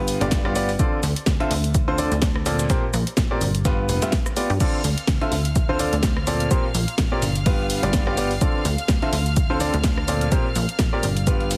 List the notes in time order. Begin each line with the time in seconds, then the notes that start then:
Already playing: G1 G2 B3 F4 G4 B4
0.08 open hi-hat, shaker
0.21 G1 G2 B3 F4 G4 D5, snare, closed hi-hat
0.31 G1, kick, snare, closed hi-hat, shaker
0.45 G2 B3 F4 G4 D5, cross-stick
0.55 B3 F4 G4 D5, open hi-hat, shaker
0.69 open hi-hat
0.79 D3 C4 F4 A4 D5, kick, closed hi-hat, shaker
1.03 D2, snare, open hi-hat, shaker
1.16 closed hi-hat
1.26 D2, kick, snare, closed hi-hat, shaker
1.40 D3 C4 F4 A4 E5, closed hi-hat
1.51 D2, open hi-hat
1.64 closed hi-hat
1.74 kick, closed hi-hat, shaker
1.88 D3 C4 F4 A4 C5
1.98 D3 C4 F4 A4 D5, open hi-hat, shaker
2.12 D2, snare, closed hi-hat
2.22 kick, snare, closed hi-hat, shaker
2.36 cross-stick
2.46 A#2 C4 F4 A4 D5, snare, open hi-hat, shaker
2.59 snare, closed hi-hat, shaker
2.70 A#2 C4 G4 A#4 C5, kick, snare, closed hi-hat, shaker
2.94 A#1, cross-stick, open hi-hat, shaker
3.07 closed hi-hat
3.17 A#1, kick, snare, closed hi-hat, shaker
3.31 A#2 C4 G4 A#4 D5
3.41 G1, open hi-hat, shaker
3.55 closed hi-hat
3.65 G2 B3 F4 G4 B4, kick, snare, closed hi-hat, shaker
3.89 F1, open hi-hat, shaker
4.02 G2 B3 F4 G4 E5, snare, closed hi-hat, shaker
4.12 kick, snare, closed hi-hat
4.26 cross-stick, shaker
4.37 B3 F4 G4 D5, open hi-hat, shaker
4.50 G2, open hi-hat
4.60 D3 C4 F4 A4 D5 F5 F6, kick, closed hi-hat, crash, shaker
4.84 D2, snare, open hi-hat, shaker
4.98 closed hi-hat
5.07 D2, kick, snare, closed hi-hat, shaker
5.21 D3 C4 F4 A4 E5, closed hi-hat
5.32 D2, open hi-hat
5.45 closed hi-hat
5.56 kick, closed hi-hat, shaker
5.69 D3 C4 F4 A4 C5
5.79 D3 C4 F4 A4 D5, open hi-hat, shaker
5.93 D2, snare, closed hi-hat
6.03 D2, kick, snare, closed hi-hat, shaker
6.17 cross-stick
6.27 A#2 C4 F4 A4 D5, open hi-hat, shaker
6.40 closed hi-hat
6.51 A#2 C4 G4 A#4 C5, kick, closed hi-hat, shaker
6.75 A#1, open hi-hat, shaker
6.88 closed hi-hat
6.98 A#1, kick, snare, closed hi-hat, shaker
7.12 A#2 C4 G4 A#4 D5
7.22 G1, snare, open hi-hat, shaker
7.36 closed hi-hat
7.46 G2 B3 F4 G4 B4, kick, closed hi-hat, open hi-hat
7.70 open hi-hat, shaker
7.83 G1 G2 B3 F4 G4 D5, snare, closed hi-hat
7.93 G1, kick, snare, closed hi-hat, shaker
8.07 G2 B3 F4 G4 D5, cross-stick
8.17 B3 F4 G4 D5, open hi-hat, shaker
8.31 open hi-hat
8.41 D3 C4 F4 A4 D5, kick, closed hi-hat, shaker
8.65 D2, snare, open hi-hat, shaker
8.78 closed hi-hat
8.88 D2, kick, snare, closed hi-hat, shaker
9.02 D3 C4 F4 A4 E5, closed hi-hat
9.13 D2, open hi-hat
9.26 closed hi-hat
9.36 kick, closed hi-hat, shaker
9.50 D3 C4 F4 A4 C5
9.60 D3 C4 F4 A4 D5, open hi-hat, shaker
9.74 D2, snare, closed hi-hat
9.84 D2, kick, snare, closed hi-hat, shaker
9.98 cross-stick
10.08 A#2 C4 F4 A4 D5, open hi-hat, shaker
10.21 closed hi-hat
10.32 A#2 C4 G4 A#4 C5, kick, closed hi-hat, shaker
10.56 A#1, open hi-hat, shaker
10.69 closed hi-hat
10.79 A#1, kick, snare, closed hi-hat, shaker
10.93 A#2 C4 G4 A#4 D5
11.03 G1, open hi-hat, shaker
11.17 closed hi-hat
11.27 G2 B3 F4 G4 B4, kick, closed hi-hat, shaker
11.40 closed hi-hat
11.51 snare, open hi-hat, shaker